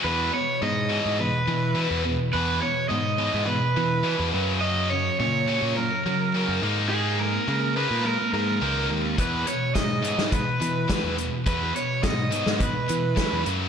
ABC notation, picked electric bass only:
X:1
M:4/4
L:1/16
Q:1/4=105
K:Elyd
V:1 name="Picked electric bass" clef=bass
E,,2 z2 G,,3 G,,2 z E,3 E,,2 z | E,,2 z2 G,,3 G,,2 z E,3 E,, F,,2- | F,,4 A,,3 A,,2 z F,3 F,, G,,2- | G,,4 C,3 A,,2 z G,,2 C,,2 D,,2 |
E,,2 z2 G,,3 G,,2 z E,3 E,,2 z | E,,2 z2 G,,3 G,,2 z E,3 E,, F,,2 |]